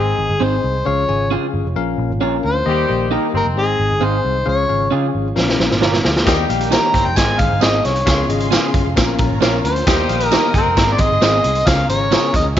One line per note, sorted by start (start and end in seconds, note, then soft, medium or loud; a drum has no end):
0.00 0.13 G#1 medium
0.00 0.59 G#2 medium
0.00 1.75 G#3 medium
0.00 0.17 C4 medium
0.00 0.31 C4 medium
0.00 0.86 C4 medium
0.00 0.84 D#4 medium
0.00 0.31 G#4 medium
0.00 0.45 G#4 medium
0.00 0.86 G#4 medium
0.00 0.16 C5 medium
0.00 0.31 D#5 medium
0.18 0.27 G#1 medium
0.29 0.38 G1 medium
0.40 0.58 G#1 medium
0.40 0.55 C4 medium
0.40 0.76 C4 medium
0.40 0.55 D#4 medium
0.40 0.76 G#4 medium
0.40 0.56 G#4 medium
0.40 0.76 C5 medium
0.40 0.89 C5 medium
0.64 0.81 C2 medium
0.85 1.04 C#2 loud
0.85 1.50 C#3 medium
0.85 2.65 F3 medium
0.85 1.03 C#4 medium
0.85 2.65 C#4 medium
0.85 2.65 F4 medium
0.85 1.04 G#4 medium
0.85 1.32 C#5 loud
0.85 1.04 F5 medium
1.08 1.35 G#1 medium
1.08 1.26 C#4 medium
1.08 1.26 G#4 medium
1.08 1.26 G#5 medium
1.31 1.45 C#4 medium
1.31 1.66 C#4 medium
1.31 1.46 F4 medium
1.31 1.66 G#4 medium
1.31 1.46 G#4 medium
1.31 1.66 F5 medium
1.54 1.62 G1 medium
1.65 1.74 F1 medium
1.76 1.93 A#1 loud
1.76 2.40 A#2 medium
1.76 3.56 A#3 medium
1.76 2.11 C#4 medium
1.76 2.11 A#4 medium
1.76 2.11 F5 medium
1.98 2.07 A#1 medium
2.10 2.19 G#1 medium
2.21 2.39 A#1 medium
2.21 2.56 C#4 medium
2.21 2.36 C#4 medium
2.21 2.36 F4 medium
2.21 2.56 A#4 medium
2.21 2.36 A#4 medium
2.21 2.56 F5 medium
2.44 2.62 D2 medium
2.44 3.09 C5 loud
2.66 2.84 D#2 loud
2.66 3.30 D#3 medium
2.66 4.46 D#3 medium
2.66 3.10 G3 loud
2.66 3.57 G3 medium
2.66 2.84 A#3 medium
2.66 4.46 D#4 medium
2.66 2.84 G4 medium
2.66 3.10 G4 loud
2.66 2.84 D#5 loud
2.88 3.16 A#1 medium
2.88 3.06 A#3 medium
2.88 3.06 G4 medium
2.88 3.06 D#5 medium
3.11 3.46 A#3 medium
3.11 3.30 A#3 medium
3.11 3.26 D#4 medium
3.11 3.47 G4 medium
3.11 3.26 G4 medium
3.11 3.27 A#4 medium
3.11 3.30 A#4 medium
3.11 3.46 D#5 medium
3.34 3.43 G1 medium
3.34 3.77 C4 medium
3.34 3.47 A#4 medium
3.34 3.77 C5 medium
3.45 3.57 F1 loud
3.57 3.74 G#1 loud
3.57 4.21 G#2 medium
3.57 5.36 G#3 medium
3.57 3.92 C4 medium
3.57 4.47 C4 medium
3.57 3.92 G#4 medium
3.57 4.05 G#4 medium
3.57 3.63 D5 medium
3.63 3.95 D#5 medium
3.79 3.88 G#1 medium
3.91 3.99 G1 medium
4.00 4.19 G#1 loud
4.00 4.36 C4 medium
4.00 4.16 C4 medium
4.00 4.16 D#4 medium
4.00 4.36 G#4 medium
4.00 4.17 G#4 medium
4.00 4.36 F5 medium
4.04 4.48 C5 medium
4.25 4.42 C2 medium
4.46 4.64 C#2 loud
4.46 5.10 C#3 medium
4.46 6.26 F3 medium
4.46 4.64 C#4 medium
4.46 6.26 C#4 medium
4.46 6.26 F4 medium
4.46 4.64 G#4 medium
4.46 4.90 C#5 loud
4.46 4.64 F5 medium
4.69 4.87 G#1 medium
4.69 4.87 C#4 medium
4.69 4.87 G#4 medium
4.69 4.87 F5 medium
4.91 5.10 C#3 medium
4.91 5.06 C#4 medium
4.91 5.27 C#4 medium
4.91 5.06 F4 medium
4.91 5.27 G#4 medium
4.91 5.07 G#4 medium
4.91 5.27 F5 medium
5.15 5.32 G#1 medium
5.36 5.55 A#1 medium
5.36 6.00 A#2 medium
5.36 6.27 A#3 medium
5.36 5.71 C#4 medium
5.36 5.71 A#4 medium
5.36 5.71 F5 medium
5.36 snare medium
5.49 snare medium
5.60 5.69 A#1 medium
5.60 snare medium
5.71 5.80 G#1 medium
5.71 snare medium
5.81 6.00 G1 medium
5.81 5.96 C#4 medium
5.81 5.96 F4 medium
5.81 5.97 A#4 medium
5.81 6.03 C#5 soft
5.81 6.03 A#5 medium
5.81 snare medium
5.93 snare medium
6.04 6.22 D2 medium
6.04 6.47 G#4 medium
6.04 6.47 F5 medium
6.04 snare medium
6.16 snare medium
6.25 6.44 D#2 loud
6.25 6.90 D#3 medium
6.25 8.06 D#3 medium
6.25 6.69 G3 loud
6.25 7.17 G3 medium
6.25 6.44 A#3 loud
6.25 7.17 A#3 medium
6.25 7.15 D#4 medium
6.25 6.44 G4 medium
6.25 6.69 G4 loud
6.25 7.16 A#4 medium
6.25 6.44 D#5 loud
6.25 7.16 G5 medium
6.25 kick loud
6.25 snare loud
6.25 closed hi-hat loud
6.25 tambourine medium
6.49 6.76 A#1 medium
6.49 6.67 A#3 medium
6.49 6.67 G4 medium
6.49 6.67 F5 medium
6.49 closed hi-hat medium
6.61 closed hi-hat medium
6.71 7.06 A#3 medium
6.71 6.90 A#3 medium
6.71 6.86 D#4 medium
6.71 7.06 G4 medium
6.71 6.86 G4 medium
6.71 6.90 A#4 medium
6.71 6.87 A#4 medium
6.71 7.06 C#5 medium
6.71 7.08 A#5 loud
6.71 snare loud
6.71 closed hi-hat medium
6.71 tambourine medium
6.93 7.03 G1 medium
6.93 7.36 C4 medium
6.93 7.36 C5 loud
6.93 kick medium
6.93 closed hi-hat medium
7.06 7.17 F1 medium
7.06 7.18 G5 medium
7.16 7.34 G#1 medium
7.16 7.81 G#2 medium
7.16 8.95 G#3 medium
7.16 7.22 B3 medium
7.16 8.06 C4 medium
7.16 8.05 D#4 medium
7.16 8.06 D#4 medium
7.16 7.52 G#4 medium
7.16 8.05 C5 medium
7.16 7.52 D#5 medium
7.16 8.05 G#5 medium
7.16 7.41 G#5 medium
7.16 kick medium
7.16 snare loud
7.16 closed hi-hat medium
7.16 tambourine medium
7.22 7.54 C4 medium
7.39 7.48 G#1 medium
7.39 7.65 F5 medium
7.39 kick medium
7.39 closed hi-hat medium
7.52 7.60 G1 medium
7.61 7.80 G#1 loud
7.61 7.76 C4 medium
7.61 7.97 C4 medium
7.61 7.76 D#4 medium
7.61 7.97 G#4 medium
7.61 7.77 G#4 medium
7.61 7.97 D#5 medium
7.61 7.87 D#5 medium
7.61 snare loud
7.61 closed hi-hat medium
7.61 tambourine medium
7.85 8.02 C2 medium
7.85 8.30 C#5 medium
7.85 snare soft
7.85 closed hi-hat medium
7.96 closed hi-hat medium
8.05 8.24 C#2 loud
8.05 8.70 C#3 medium
8.05 9.85 F3 medium
8.05 8.24 C#4 medium
8.05 9.85 C#4 medium
8.05 9.85 F4 medium
8.05 8.24 G#4 medium
8.05 8.95 G#4 medium
8.05 8.24 F5 medium
8.05 8.95 F5 medium
8.05 8.95 C6 medium
8.05 kick loud
8.05 snare loud
8.05 closed hi-hat loud
8.05 tambourine medium
8.29 8.55 G#1 medium
8.29 8.47 C#4 medium
8.29 8.47 G#4 medium
8.29 8.47 D#5 medium
8.29 closed hi-hat medium
8.40 closed hi-hat medium
8.51 8.66 C#4 medium
8.51 8.87 C#4 medium
8.51 8.66 F4 medium
8.51 8.67 G#4 medium
8.51 8.87 G#4 medium
8.51 8.87 F5 medium
8.51 snare loud
8.51 closed hi-hat medium
8.51 tambourine medium
8.74 8.83 G1 loud
8.74 kick medium
8.74 closed hi-hat medium
8.85 8.94 F1 medium
8.96 9.14 A#1 loud
8.96 9.60 A#2 medium
8.96 9.86 A#3 medium
8.96 9.02 C4 medium
8.96 9.85 F4 medium
8.96 9.32 A#4 medium
8.96 9.85 C#5 medium
8.96 9.31 F5 medium
8.96 9.85 A#5 medium
8.96 kick medium
8.96 snare loud
8.96 closed hi-hat medium
8.96 tambourine medium
9.02 9.34 C#4 medium
9.18 9.28 A#1 medium
9.18 kick medium
9.18 closed hi-hat medium
9.30 9.39 G#1 medium
9.41 9.59 A#1 medium
9.41 9.48 C4 medium
9.41 9.56 C#4 medium
9.41 9.56 F4 medium
9.41 9.56 A#4 medium
9.41 9.77 A#4 medium
9.41 9.77 F5 medium
9.41 snare loud
9.41 closed hi-hat medium
9.41 tambourine medium
9.47 9.79 C#4 medium
9.64 9.82 D2 medium
9.64 10.26 C5 medium
9.64 closed hi-hat medium
9.76 closed hi-hat medium
9.87 10.04 D#2 loud
9.87 10.50 D#3 medium
9.87 10.29 G3 loud
9.87 10.76 G3 medium
9.87 10.04 A#3 medium
9.87 10.76 A#3 medium
9.87 11.65 D#4 medium
9.87 10.29 G4 loud
9.87 10.04 G4 medium
9.87 10.76 G4 medium
9.87 10.75 A#4 medium
9.87 10.05 D#5 medium
9.87 10.75 G5 medium
9.87 10.75 D#6 medium
9.87 kick loud
9.87 snare loud
9.87 closed hi-hat loud
9.87 tambourine medium
10.09 10.35 A#1 medium
10.09 10.27 A#3 medium
10.09 10.27 G4 medium
10.09 10.27 F5 medium
10.09 closed hi-hat medium
10.20 closed hi-hat medium
10.26 10.51 A#4 medium
10.31 10.66 A#3 medium
10.31 10.50 A#3 medium
10.31 10.46 D#4 medium
10.31 10.66 G4 medium
10.31 10.47 G4 medium
10.31 10.50 A#4 medium
10.31 10.47 A#4 medium
10.31 10.66 D#5 medium
10.31 snare loud
10.31 closed hi-hat medium
10.31 tambourine medium
10.54 10.63 G1 medium
10.54 10.98 C4 medium
10.54 10.90 A#4 medium
10.54 10.97 C5 medium
10.54 kick medium
10.54 closed hi-hat medium
10.66 10.77 F1 loud
10.76 10.94 G#1 loud
10.76 11.40 G#2 medium
10.76 12.55 G#3 medium
10.76 10.82 A#3 medium
10.76 11.66 C4 medium
10.76 11.12 G#4 medium
10.76 12.55 G#4 medium
10.76 11.65 G#4 medium
10.76 11.12 D#5 medium
10.76 11.66 D#5 medium
10.76 11.66 C6 medium
10.76 kick medium
10.76 snare loud
10.76 closed hi-hat medium
10.76 tambourine medium
10.82 11.14 C4 medium
10.92 11.02 D5 medium
10.98 11.08 G#1 medium
10.98 11.69 D#5 loud
10.98 kick medium
10.98 closed hi-hat medium
11.11 11.19 G1 medium
11.21 11.39 G#1 medium
11.21 11.27 B3 medium
11.21 11.36 C4 medium
11.21 11.36 D#4 medium
11.21 11.57 G#4 medium
11.21 11.37 G#4 loud
11.21 11.57 F5 medium
11.21 snare loud
11.21 closed hi-hat medium
11.21 tambourine medium
11.27 11.59 C4 medium
11.44 11.62 C2 medium
11.44 closed hi-hat medium
11.55 closed hi-hat soft
11.66 11.84 C#2 loud
11.66 12.30 C#3 medium
11.66 11.84 C#4 medium
11.66 12.57 C#4 medium
11.66 12.55 F4 medium
11.66 12.57 F4 medium
11.66 11.84 G#4 medium
11.66 12.55 C#5 medium
11.66 11.84 F5 loud
11.66 11.89 F5 loud
11.66 12.55 A#5 medium
11.66 kick loud
11.66 snare loud
11.66 closed hi-hat loud
11.66 tambourine medium
11.89 12.15 G#1 medium
11.89 12.07 C#4 medium
11.89 12.07 G#4 medium
11.89 12.07 C5 medium
11.89 12.31 C#5 loud
11.89 closed hi-hat medium
12.11 12.26 C#4 medium
12.11 12.47 C#4 medium
12.11 12.26 F4 medium
12.11 12.26 G#4 medium
12.11 12.47 G#4 medium
12.11 12.47 A#4 medium
12.11 snare loud
12.11 closed hi-hat medium
12.11 tambourine medium
12.34 12.42 D#2 medium
12.34 12.46 D#5 medium
12.34 kick medium
12.34 closed hi-hat medium
12.45 12.54 C#2 medium